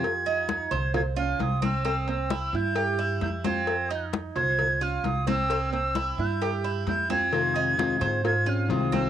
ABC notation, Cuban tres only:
X:1
M:4/4
L:1/8
Q:1/4=132
K:Fm
V:1 name="Cuban tres"
z E2 c2 F2 C | C2 =E2 G E2 C- | C E2 c2 F2 C | C2 =E2 G E2 C- |
C E2 c2 F2 C |]